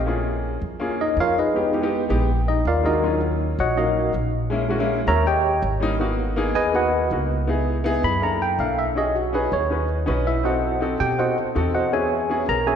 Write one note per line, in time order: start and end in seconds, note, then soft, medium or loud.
0.00 0.56 A#1 medium
0.06 0.58 A#3 medium
0.06 0.59 C#4 medium
0.06 0.59 F4 medium
0.06 0.59 G#4 medium
0.62 1.14 F2 medium
0.80 1.32 A#3 medium
0.80 1.32 C#4 medium
0.80 1.33 F4 medium
0.80 1.33 G#4 medium
1.01 1.18 D#4 medium
1.01 1.18 D#5 medium
1.17 2.04 F2 medium
1.17 1.37 F4 medium
1.17 1.37 A#4 medium
1.17 1.37 C#5 medium
1.17 1.37 F5 loud
1.39 1.72 D#4 medium
1.39 1.72 G#4 medium
1.39 1.72 B4 medium
1.39 1.72 D#5 medium
1.54 1.67 G#3 medium
1.54 1.68 B3 medium
1.54 1.68 D#4 medium
1.54 1.68 G4 medium
1.73 1.79 G#3 medium
1.73 1.80 B3 medium
1.73 1.80 D#4 medium
1.73 1.80 G4 medium
1.81 2.01 G#3 medium
1.81 2.02 B3 medium
1.81 2.02 D#4 medium
1.81 2.02 G4 loud
2.09 2.62 A#1 medium
2.09 2.28 G#3 medium
2.09 2.28 B3 medium
2.09 2.29 D#4 medium
2.09 2.29 G4 loud
2.48 2.66 D#4 medium
2.48 2.66 D#5 medium
2.65 3.53 D#2 medium
2.65 2.85 F4 medium
2.65 2.85 A#4 medium
2.65 2.85 D5 medium
2.65 2.85 F5 medium
2.83 2.97 G#3 medium
2.83 2.97 A#3 medium
2.83 2.97 D4 medium
2.83 3.20 D#4 medium
2.83 2.98 F4 medium
2.83 3.20 F#4 medium
2.83 3.20 A#4 medium
2.83 3.20 D#5 medium
3.02 3.55 F#3 medium
3.02 3.55 A#3 medium
3.02 3.55 C#4 medium
3.02 3.56 F4 medium
3.59 4.10 A#1 medium
3.59 3.77 F#4 medium
3.59 3.77 C#5 medium
3.59 3.76 D#5 medium
3.59 3.77 F#5 medium
3.76 4.29 F#3 medium
3.76 4.29 A#3 medium
3.76 4.29 C#4 medium
3.76 4.12 D#4 medium
3.76 4.12 F#4 medium
3.76 4.12 A#4 medium
3.76 4.12 D#5 medium
3.76 4.30 F5 medium
4.14 5.01 A#1 medium
4.50 4.64 G#3 loud
4.50 4.64 A#3 medium
4.50 4.64 C#4 medium
4.50 4.65 E4 loud
4.68 4.76 G#3 medium
4.68 4.76 A#3 medium
4.68 4.76 C#4 medium
4.68 4.77 F#4 loud
4.78 4.98 G#3 loud
4.78 4.99 A#3 medium
4.78 4.99 C#4 medium
4.78 4.99 E4 loud
5.06 5.59 D#2 medium
5.06 5.25 G#3 medium
5.06 5.26 A#3 medium
5.06 5.26 C#4 medium
5.06 5.26 F#4 medium
5.06 5.26 A#4 medium
5.06 5.26 C#5 medium
5.06 5.25 E5 medium
5.06 5.25 A#5 loud
5.27 5.61 G4 medium
5.27 5.61 C#5 medium
5.27 5.61 D#5 medium
5.27 5.61 G5 loud
5.62 6.49 G#1 medium
5.80 5.94 G3 medium
5.80 5.94 A#3 medium
5.80 5.95 C#4 medium
5.80 5.95 D#4 loud
5.99 6.25 A#3 medium
5.99 6.26 B3 medium
5.99 6.26 D#4 medium
5.99 6.26 F#4 medium
6.36 6.63 A#3 loud
6.36 6.63 B3 medium
6.36 6.63 D#4 loud
6.36 6.63 G#4 loud
6.55 7.07 D#2 medium
6.55 6.74 G#4 medium
6.55 6.74 B4 medium
6.55 6.74 D#5 medium
6.55 6.73 G#5 loud
6.72 6.99 A#3 medium
6.72 7.00 B3 medium
6.72 7.00 D#4 medium
6.72 7.00 F#4 medium
6.72 7.09 F#4 medium
6.72 7.09 B4 medium
6.72 7.10 D#5 medium
6.72 7.09 F#5 medium
7.10 7.98 C#2 medium
7.10 7.37 A#3 medium
7.10 7.37 B3 medium
7.10 7.37 D#4 medium
7.10 7.38 F#4 medium
7.47 7.74 B3 medium
7.47 7.74 D#4 medium
7.47 7.74 E4 medium
7.47 7.75 G#4 loud
7.84 8.11 B3 loud
7.84 8.11 D#4 medium
7.84 8.11 E4 medium
7.84 8.12 G#4 loud
8.03 8.55 F#2 medium
8.03 8.22 B5 loud
8.21 8.48 A#3 medium
8.21 8.48 D4 medium
8.21 8.48 E4 medium
8.21 8.49 A4 medium
8.21 8.41 A#5 medium
8.42 8.60 G5 medium
8.59 9.46 B1 medium
8.59 8.85 A#3 medium
8.59 8.85 D4 medium
8.59 8.86 E4 medium
8.59 8.86 A4 medium
8.59 8.78 F5 medium
8.79 8.96 E5 medium
8.95 9.22 C#4 medium
8.95 9.22 D#4 medium
8.95 9.22 F#4 medium
8.95 9.23 G#4 medium
8.95 9.15 D#5 medium
9.15 9.33 F#4 medium
9.33 9.59 C#4 medium
9.33 9.59 D#4 medium
9.33 9.60 F#4 medium
9.33 9.60 G#4 medium
9.33 9.52 B4 medium
9.52 10.04 D#2 medium
9.52 9.87 C#5 medium
9.70 9.96 C#4 medium
9.70 9.97 D#4 medium
9.70 9.97 F#4 medium
9.70 9.97 B4 medium
10.06 10.94 B1 medium
10.06 10.33 C#4 medium
10.06 10.33 D#4 medium
10.06 10.34 F#4 medium
10.06 10.34 B4 loud
10.27 10.45 E4 medium
10.27 10.45 E5 medium
10.43 10.70 C4 medium
10.43 10.70 D#4 medium
10.43 10.71 F#4 medium
10.43 10.97 F#4 medium
10.43 10.71 A4 medium
10.43 10.97 C5 medium
10.43 10.97 D#5 medium
10.43 10.97 F#5 medium
10.80 11.07 C4 medium
10.80 11.07 D#4 medium
10.80 11.08 F#4 medium
10.80 11.08 A4 medium
11.00 11.52 B2 medium
11.00 11.19 G4 medium
11.00 11.18 G5 loud
11.18 11.44 C4 medium
11.18 11.45 D#4 medium
11.18 11.45 F#4 medium
11.18 11.37 F#4 medium
11.18 11.45 A4 medium
11.18 11.37 C5 medium
11.18 11.37 D#5 medium
11.18 11.37 F#5 medium
11.55 12.43 E2 medium
11.55 11.81 C4 medium
11.55 11.82 D#4 medium
11.55 11.82 F#4 medium
11.55 11.82 A4 loud
11.74 11.93 F#4 medium
11.74 11.93 C5 medium
11.74 11.93 D#5 medium
11.74 11.92 F#5 medium
11.92 12.18 B3 medium
11.92 12.19 C#4 medium
11.92 12.19 F#4 medium
11.92 12.45 G#4 medium
11.92 12.19 G#4 medium
11.92 12.45 C#5 medium
11.92 12.45 E5 medium
11.92 12.45 G#5 medium
12.29 12.56 B3 medium
12.29 12.56 C#4 medium
12.29 12.56 F#4 medium
12.29 12.56 G#4 medium
12.49 12.76 B1 medium
12.49 12.67 A#4 medium
12.49 12.67 A#5 loud
12.66 12.76 B3 medium
12.66 12.76 C#4 medium
12.66 12.76 F#4 medium
12.66 12.76 G#4 medium
12.66 12.76 C#5 medium
12.66 12.76 E5 medium
12.66 12.76 G#5 medium